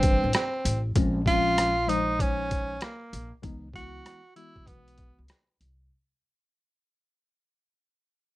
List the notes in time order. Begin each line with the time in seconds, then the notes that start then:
Already playing: G1 E3 G3 C4 D4 B4
0.03 kick, closed hi-hat
0.24 A1
0.33 C4, cross-stick, closed hi-hat
0.65 A1, closed hi-hat
0.96 A#1 F3 G#3 C4 C#4, kick, closed hi-hat
1.26 F3 G#3 C4 C#4 F4, kick, closed hi-hat
1.58 cross-stick, closed hi-hat
1.87 F3 G#3 D#4 C5, closed hi-hat
2.19 C#4, kick, closed hi-hat
2.51 kick, closed hi-hat
2.81 A#3, cross-stick, closed hi-hat
3.13 A#1, closed hi-hat
3.42 C#2 E3 G#3 B3 D#4, kick, closed hi-hat
3.74 E3 G#3 B3 E4 F#4, kick, closed hi-hat
4.06 cross-stick, closed hi-hat
4.36 E3 G#3 B3 E4 F#4, closed hi-hat
4.56 B1, kick
4.67 B3, kick, closed hi-hat
4.88 closed hi-hat
4.98 kick, closed hi-hat
5.19 C#2
5.28 cross-stick, closed hi-hat
5.61 C2, closed hi-hat